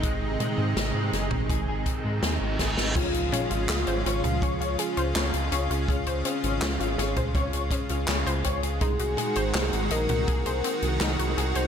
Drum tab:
CC |----------------|x---------------|----------------|----------------|
HH |x-x-x-x-x-x-x-x-|xxxxxxxxxxxxxxxx|xxxxxxxxxxxxxxxx|xxxxxxxxxxxxxxxx|
CP |----------------|----x-------x---|----x-------x---|----x-------x---|
SD |----o-o-----o-oo|----o-------o---|----o-o-----o---|----o-------o---|
T2 |--o----o--------|--o----o--------|-------o--------|--o----o--------|
BD |o------oo-o---o-|o-------o-------|o------oo-o---o-|o-------o-------|